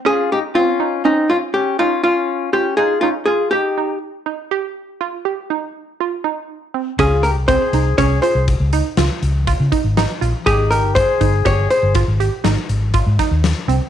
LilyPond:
<<
  \new Staff \with { instrumentName = "Hollow-body jazz guitar" } { \time 7/4 \key des \lydian \tempo 4 = 121 aes'8 g'8 f'4 ees'8 f'8 g'8 f'8 f'4 g'8 aes'8 f'8 aes'8 | g'4 r1. | aes'8 bes'8 c''4 des''8 c''8 r1 | aes'8 bes'8 c''4 des''8 c''8 r1 | }
  \new Staff \with { instrumentName = "Flugelhorn" } { \time 7/4 \key des \lydian f'8 ees'8 des'4 c'8 des'8 des'8 des'8 des'4 des'8 f'8 des'8 f'8 | ees'4 r1. | f'8 g'8 aes'4 aes'8 aes'8 r1 | ees'8 g'8 aes'4 aes'8 aes'8 r1 | }
  \new Staff \with { instrumentName = "Synth arpeggio sound" } { \time 7/4 \key des \lydian des'4 c'8 ees'8 des'8 f'4 ees'8 f'4 f'8 ees'8 ees'8 f'8 | g'8 ees'4 ees'8 g'4 f'8 g'8 ees'4 f'8 ees'4 c'8 | des'4 c'8 ees'8 des'8 f'4 ees'8 f'4 f'8 ees'8 ees'8 f'8 | g'8 ees'4 ees'8 g'4 f'8 g'8 ees'4 f'8 ees'4 c'8 | }
  \new Staff \with { instrumentName = "Fingered electric bass" } { \clef bass \time 7/4 \key des \lydian r1. r4 | r1. r4 | des,8. c,8 r16 c,8 c,8 r16 c,8 des,8 r16 des,16 r16 des,8. des16 r16 aes,,8 r16 bes,,16 r16 | aes,,8. g,,8 r16 g,,8 g,,8 r16 g,,8 aes,,8 r16 aes,,16 r16 aes,,8. aes,16 r16 ees,8 r16 c,16 r16 | }
  \new DrumStaff \with { instrumentName = "Drums" } \drummode { \time 7/4 r4 r4 r4 r4 r4 r4 r4 | r4 r4 r4 r4 r4 r4 r4 | <hh bd>8 hh8 <hh bd>8 hh8 <hh bd>8 hh8 <hh bd>8 hh8 <hh sn>8 hh8 <hh bd>8 <hh bd>8 <hh sn>8 hh8 | <hh bd>8 hh8 <hh bd>8 <hh bd>8 <hh bd sn>8 hh8 <hh bd sn>8 hh8 <hh sn>8 hh8 <hh bd>8 <hh bd sn>8 <hh sn>8 hh8 | }
>>